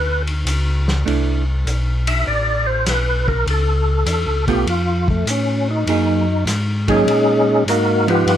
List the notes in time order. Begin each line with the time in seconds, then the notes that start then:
Already playing: D2 B4
0.27 ride
0.45 C#2, hi-hat pedal, ride
0.88 snare
1.06 C2 A3 D4 E4, ride
1.66 B1, hi-hat pedal, ride
2.07 E5, ride
2.27 A1 D5
2.66 C5
2.86 B1 B4, snare, hi-hat pedal, ride
3.28 A#4, kick
3.46 C#2, ride
3.50 A4
4.06 E2, hi-hat pedal, ride
4.26 C#2
4.46 B1 A3 B3 F4 G4, kick, ride
4.66 F2 F4, ride
5.08 A3, kick
5.26 A2, hi-hat pedal, ride
5.30 C#4
5.71 D#4
5.86 F#2 F#3 A#3 D#4 G#4, ride
6.46 G#2, snare, hi-hat pedal, ride
6.88 F#3 G#3 A#3 C#4 D#4 G#4, kick, ride
7.06 A#2, ride
7.66 G#2 A#3 D#4 F#4 A#4, hi-hat pedal, ride
8.07 F3 B3 D#4 F4 G4 B4, ride
8.26 G2, ride